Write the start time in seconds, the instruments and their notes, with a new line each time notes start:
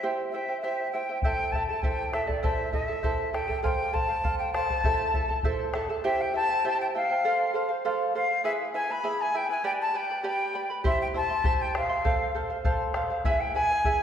0.03 charango E4 G4 C5 E5 G5
0.30 charango E4 E5, quena E5
0.34 charango C5 G5
0.49 charango E4 C5 G5
0.61 charango E4 G4 C5 E5 G5, quena E5
0.92 charango E4 C5 E5 G5, quena G5
1.09 charango E4 C5 G5
1.22 charango E4 A4 C5 E5 A5, quena G5, bombo low
1.51 charango E4 E5, quena A5, bombo low
1.56 charango A4 A5
1.67 charango E4 A4 A5, quena A5
1.82 charango E4 A4 C5 E5 A5, quena G5, bombo low
2.13 charango E4 A4 E5 A5, quena E5, bombo rim
2.27 charango E4 A4 A5, quena D5, bombo low
2.43 charango E4 A4 C5 E5 A5, quena E5, bombo low
2.72 charango E4 A4 E5 A5, quena E5, bombo low
2.88 charango E4 A4 A5
3.03 charango E4 A4 C5 E5 A5, bombo low
3.33 charango E4 A4 E5 A5, quena G5, bombo rim
3.48 charango E4 A4 A5, bombo low
3.63 charango A4 C5 F5, quena G5 G#5, bombo low
3.93 charango A4 C5 F5, quena A5, bombo low
4.09 charango C5 F5
4.24 charango A4 C5 F5, bombo low
4.38 quena G5
4.53 charango A4 C5 F5, quena A5, bombo rim
4.70 charango C5 F5, bombo low
4.84 charango E4 A4 C5 E5 A5, bombo low
5.14 charango E4 A4 E5 A5, bombo low
5.28 charango E4 A4 A5, bombo low
5.43 charango E4 A4 C5 E5 A5, bombo low
5.74 charango E4 A4 E5 A5, bombo rim
5.90 charango E4 A4 A5
6.04 charango E4 G4 C5 E5 G5, quena E5
6.21 quena G5
6.34 charango E4 C5 E5 G5, quena A5
6.49 charango E4 C5 G5
6.65 charango E4 G4 C5 E5 G5
6.80 quena G5
6.95 charango E4 C5 E5 G5, quena F5
7.09 charango E4 C5 G5
7.25 charango A4 C5 F5
7.54 charango A4 C5 F5
7.69 charango C5 F5
7.85 charango A4 C5 F5
8.15 charango A4 C5 F5, quena F5
8.29 charango C5 F5
8.44 charango E4 G#4 B4 E5 G#5, quena E5
8.74 charango E4 B4 E5 G#5, quena G#5
8.89 charango E4 B4 G#5, quena B5
9.04 charango E4 G#4 B4 E5 G#5
9.21 quena G#5
9.34 charango E4 B4 E5 G#5, quena G5
9.50 charango E4 B4 G#5, quena G#5
9.64 charango G4 B4 D5 G5 B5, quena G5
9.81 quena A5
9.94 charango B4 D5 G5 B5, quena G5
10.10 charango B4 D5 B5
10.23 charango G4 B4 D5 G5 B5, quena G5
10.54 charango B4 D5 G5 B5
10.70 charango B4 D5 B5
10.84 charango E4 G4 C5 E5 C6, quena E5, bombo low
11.01 quena G5
11.14 charango E4 C5 E5 C6, quena A5
11.30 charango E4 E5 C6
11.44 charango E4 G4 C5 E5 C6, bombo low
11.61 quena G5
11.75 charango E4 C5 E5 C6, quena F5, bombo rim
11.89 charango E4 E5 C6
12.04 charango A4 C5 F5, bombo low
12.35 charango A4 C5 F5
12.50 charango C5 F5
12.65 charango A4 C5 F5, bombo low
12.94 charango A4 C5 F5, bombo rim
13.10 charango C5 F5
13.24 charango E4 G#4 B4 E5 G#5, quena E5, bombo low
13.40 quena G5
13.54 charango E4 B4 E5 G#5, quena G#5
13.71 charango E4 B4 G#5
13.85 charango E4 G#4 B4 E5 G#5, bombo low